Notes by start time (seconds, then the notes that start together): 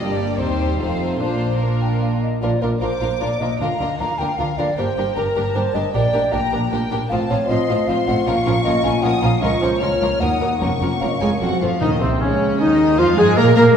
0.01 G1 G2 G3 A#3 D4 G4 D5
0.40 D#2 G3 C4 D#4 G4 C5
0.80 F1 F2 A3 C4 D#4 F4 C5
1.21 A#1 A#2 A#3 D4 F4 C5
1.61 A#3 D4 F4 A#4
1.82 G5
2.02 F5
2.22 D#5
2.42 A#1 A#2 F3 A#3 D4 F4 A#4 D5
2.62 A#1 A#2 A#3 D4 F4 A#4
2.81 A#1 A#2 A#3 D4 F4 A#4 C5 D6
3.01 A#1 A#2 A#3 D4 F4 A#4
3.20 A#1 A#2 A#3 D4 F4 A#4 D5
3.39 A#1 A#2 A#3 D4 F4 A#4 D#5
3.60 D2 D3 A#3 D4 F4 A#4 F5 A#5
3.79 D2 D3 A#3 D4 F4 A#4
3.99 D2 D3 A#3 D4 F4 A#4 F5 A#5
4.18 D2 D3 A#3 D4 F4 A#4 G5
4.38 D2 D3 A#3 D4 F4 A#4 F5
4.57 D2 D3 A#3 D4 F4 A#4 D5
4.76 G1 G2 A#3 D4 G4 A#4 C5 G5
4.96 G1 G2 A#3 D4 G4 A#4
5.16 G1 G2 A#3 D4 G4 A#4 A#5
5.35 G1 G2 A#3 D4 G4 A#4
5.55 G1 G2 A#3 D4 G4 A#4 C5 A5
5.74 G1 G2 A#3 D4 G4 A#4 D#5
5.94 A#1 A#2 A#3 D4 G4 A#4 D5 G5
6.13 A#1 A#2 A#3 D4 G4 A#4
6.32 A#1 A#2 A#3 D4 G4 A#4 G5 A#5
6.52 A#1 A#2 A#3 D4 G4 A#4
6.72 A#1 A#2 A#3 D4 G4 A#4 G5
6.91 A#1 A#2 A#3 D4 G4 A#4
7.09 A1 A2 F3 C4 F4 C5 F5 A5
7.29 A1 A2 F3 C4 F4 C5 C#5
7.48 A1 A2 F3 C4 F4 C5 D#5 C6
7.69 A1 A2 F3 C4 F4 C5
7.87 A1 A2 F3 C4 F4 C5 F5 C6
8.07 A1 A2 F3 C4 F4 C5 F#5
8.26 A#1 A#2 F3 C#4 F4 A#4 F5 C#6
8.46 A#1 A#2 F3 C#4 F4 A#4
8.64 A#1 A#2 F3 C#4 F4 A#4 D#5
8.83 A#1 A#2 F3 C#4 F4 A#4 G#5
9.03 A#1 A#2 F3 C#4 F4 A#4 F#5 D#6
9.22 A#1 A#2 F3 C#4 F4 A#4 F5
9.42 C#2 F3 A#3 C#4 F4 A#4 D#5 C#6
9.61 C#2 F3 C#4 F4 A#4 C5
9.81 C#2 F3 C#4 F4 A#4 C#5 F6
10.01 C#2 F3 C#4 F4 A#4
10.20 D#2 F#3 A#3 D#4 A#4 F#5 D#6
10.40 D#2 F#3 A#3 D#4 A#4
10.61 F1 F2 F3 A#3 C#4 A#4 F#5 C#6
10.81 F1 F2 F3 A#3 C#4 A#4
11.00 F1 F2 F3 A#3 C#4 A#4 F5
11.08 D#5
11.15 F5
11.21 F1 F2 F3 G#3 A#3 C#4 G#4 A#4 G#5
11.41 F1 F2 F3 F#3 A3 C4 F#4 C5 F#5
11.61 F1 F2 F3 A3 C4 F4 C5 F5
11.81 D#2 A#2 D#3 D#4 D#5
12.01 C2 C3 C4 C5
12.21 C#2 C#3 C#4 C#5
12.60 D#2 D#3 D#4 D#5
12.98 F2 F3 F4 F5
13.18 G#2 G#3 G#4 G#5
13.37 A#2 A#3 A#4 A#5
13.56 A#2 A#3 A#4 A#5